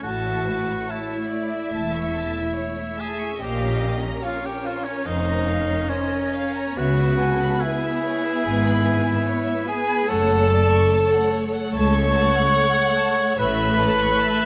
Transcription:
0.03 A1 A2 A3 E4 F#4 A4 C#5 F#5 A5
0.27 E5
0.46 B4 A5
0.71 C#6
0.86 E4 C#5 E5 A5
0.90 E4
1.11 E5
1.27 D5
1.32 C#5
1.50 E5
1.71 E1 E2 E5 A5
1.95 C#6
2.14 A5
2.36 E5
2.55 C#5
2.78 E5
2.97 G#4 E5 G#5 A5
3.17 C#6
3.38 A#1 A#2 C#4 G4 A#4 C5 D#5 F5 G5
3.43 G4
3.60 C#5
3.81 F5
4.02 A#5
4.22 F4 C#5 F5
4.45 G4 C#5 G5
4.62 F4 C5 F5
4.84 C#4 C#5
5.05 F1 F2 D#4 C5 D#5 F5
5.25 A#5
5.48 F5
5.67 C#5
5.89 C#4 C5 C#5 D#5
6.10 C#5
6.33 C#5 F5
6.56 A#5
6.77 C#2 C#3 B3 F#4 B4 C#5 E5 F#5
6.99 E5
7.19 A4 G#5
7.40 B5
7.60 E4 G#4 E5 G#5
7.83 E5
8.04 C#5
8.24 E5
8.44 G#1 G#2 G#5
8.66 B5
8.85 G#5
9.07 E5
9.26 C#5
9.45 E5
9.66 G#4 B4 G#5
9.86 B5
10.08 F#1 F#2 A3 A4 C#5 F#5 A5
10.28 F#5
10.50 D5 A5
10.70 C#6
10.90 C#5 A5
11.13 F#5
11.33 C#5
11.53 F#5
11.73 C#2 A4 C#5 A5 C#6
11.95 C#6
12.13 F#5 A5
12.33 F#5
12.55 C#5
12.74 F#5
12.97 A5
13.16 C#6
13.37 A1 A2 A3 A4 B4 C#5 E5 B5
13.57 E5
13.78 C#5 A5
14.00 C#6
14.20 E5 A5
14.40 E5

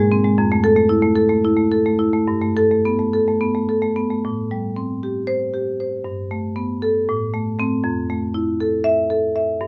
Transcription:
Already playing: G#2 G#3
0.12 C4
0.24 G#3
0.38 F2
0.52 A3
0.64 A4
0.77 A3
0.89 E4
1.02 A3
1.16 A4
1.29 A3
1.45 E4
1.57 A3
1.72 A4
1.86 A3
1.99 E4
2.13 A3
2.28 G2
2.42 A3
2.57 A4
2.71 A3
2.85 B3
2.99 A3
3.13 A4
3.28 A3
3.41 B3
3.55 A3
3.69 A4
3.82 A3
3.96 B3
4.10 A3
4.25 A2
4.51 G3
4.76 C4
5.03 G4
5.27 C5
5.54 G4
5.80 C5
6.04 G2
6.31 A3
6.56 B3
6.82 A4
7.09 A2
7.34 A3
7.59 A3 C4
7.84 F2
8.10 A3
8.34 E4
8.61 A4
8.84 E5
9.10 A4
9.36 E5
9.61 G2

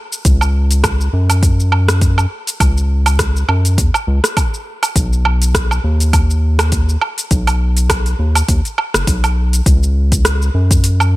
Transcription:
0.13 shaker
0.25 C#2, kick, open hi-hat, shaker
0.41 low woodblock, shaker
0.71 open hi-hat, shaker
0.84 kick, cross-stick, open hi-hat, low woodblock, shaker
1.01 shaker
1.13 F#2
1.30 open hi-hat, low woodblock, shaker
1.43 kick, open hi-hat, shaker
1.60 shaker
1.72 low woodblock
1.88 cross-stick, open hi-hat, shaker
2.01 kick, open hi-hat, shaker
2.18 low woodblock, shaker
2.47 open hi-hat, shaker
2.60 C#2, kick, open hi-hat, low woodblock, shaker
2.77 shaker
3.06 open hi-hat, low woodblock, shaker
3.19 kick, cross-stick, open hi-hat, shaker
3.36 shaker
3.49 F#2, low woodblock
3.65 open hi-hat, shaker
3.78 E2, kick, open hi-hat, shaker
3.94 low woodblock, shaker
4.07 C#2
4.24 cross-stick, open hi-hat, shaker
4.37 kick, open hi-hat, low woodblock, shaker
4.54 shaker
4.83 open hi-hat, low woodblock, shaker
4.96 B1, kick, open hi-hat, shaker
5.13 shaker
5.25 low woodblock
5.42 open hi-hat, shaker
5.54 kick, cross-stick, open hi-hat, shaker
5.71 low woodblock, shaker
5.84 D#2
6.00 open hi-hat, shaker
6.13 kick, open hi-hat, low woodblock, shaker
6.30 shaker
6.59 cross-stick, open hi-hat, low woodblock, shaker
6.72 kick, open hi-hat, shaker
6.89 shaker
7.01 low woodblock
7.18 open hi-hat, shaker
7.31 B1, kick, open hi-hat, shaker
7.47 open hi-hat, low woodblock, shaker
7.77 open hi-hat, shaker
7.90 kick, cross-stick, open hi-hat, low woodblock, shaker
8.06 open hi-hat, shaker
8.19 D#2
8.35 open hi-hat, low woodblock, shaker
8.48 D#2, kick, open hi-hat, shaker
8.65 open hi-hat, shaker
8.78 low woodblock
8.94 F#1, cross-stick, open hi-hat, shaker
9.07 B1, kick, open hi-hat, shaker
9.24 open hi-hat, low woodblock, shaker
9.53 open hi-hat, shaker
9.66 C#2, kick, open hi-hat, shaker
9.83 shaker
10.12 kick, open hi-hat, shaker
10.25 cross-stick, open hi-hat, shaker
10.42 shaker
10.54 F#2
10.71 kick, open hi-hat, shaker
10.84 open hi-hat, shaker
11.00 low woodblock, shaker

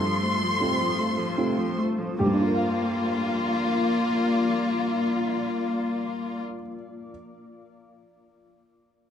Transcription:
Already playing: G2 A3 F4 A4 C5 C6
0.05 F3
0.23 A3
0.42 F3
0.59 C3 C4 F4 A4
0.79 F3
0.98 A3
1.18 F3
1.37 C3 C4 F4 A4
1.57 F3
1.78 A3
1.99 F3
2.19 G2 A#3 F4 G4 D5
2.26 G3
2.33 D4
2.41 F4
2.48 A#4
2.54 F5

